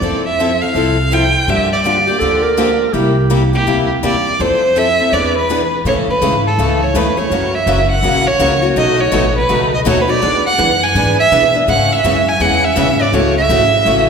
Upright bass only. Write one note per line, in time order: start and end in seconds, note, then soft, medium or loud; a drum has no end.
0.01 0.60 F2 medium
0.74 1.33 C2 medium
1.47 2.06 G2 medium
2.21 2.79 D2 medium
2.93 3.52 C2 medium
3.67 3.98 D2 medium
4.03 4.34 E2 medium
4.40 4.98 F2 medium
5.12 5.71 E2 medium
5.85 6.06 A2 medium
6.07 muted upright bass stroke soft
6.21 6.57 G#2 medium
6.58 6.93 C#2 medium
6.94 7.15 E2 medium
7.17 muted upright bass stroke soft
7.30 7.66 F#2 medium
7.66 8.02 F#1 medium
8.02 8.38 A#1 medium
8.39 8.75 C#2 medium
8.76 9.12 B1 medium
9.12 9.48 A1 medium
9.49 9.85 C#2 medium
9.86 10.21 D#2 medium
10.22 10.57 E2 medium
10.58 10.94 F#2 medium
10.95 11.30 G#2 medium
11.31 11.67 B2 medium
11.68 12.03 G#2 medium
12.04 12.39 F#2 medium
12.40 12.75 E2 medium
12.76 13.12 G#2 medium
13.13 13.48 C#2 medium
13.49 13.85 G#1 medium
13.85 14.09 A1 medium